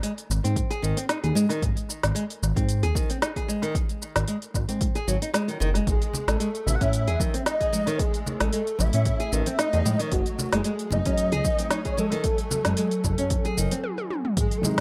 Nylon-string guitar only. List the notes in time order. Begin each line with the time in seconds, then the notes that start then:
0.03 G#3
0.44 C4
0.70 G#4
0.82 D#3
0.97 C4
1.09 D#4
1.24 G#4
1.35 G#3
1.49 D#3
2.15 G#3
2.56 C4
2.83 G#4
2.95 D#3
3.10 C4
3.22 D#4
3.36 G#4
3.48 G#3
3.62 D#3
4.28 G#3
4.69 C4
4.95 G#4
5.08 F#3
5.22 D#4
5.34 G#3
5.48 D#3
5.60 D#3
5.75 G#3
6.28 G#3
6.40 G#3
6.81 C#4
7.08 G#4
7.20 D#3
7.34 C4
7.46 D#4
7.60 G#4
7.73 G#3
7.87 D#3
8.40 G#3
8.53 G#3
8.94 C#4
9.20 G#4
9.33 D#3
9.46 C4
9.59 D#4
9.73 G#4
9.85 G#3
10.00 D#3
10.53 G#3
10.65 G#3
11.06 C#4
11.32 G#4
11.44 D#3
11.59 C4
11.71 D#4
11.85 G#4
11.97 G#3
12.12 D#3
12.65 G#3
12.77 G#3
13.18 C#4
13.45 G#4
13.57 D#3
13.72 C4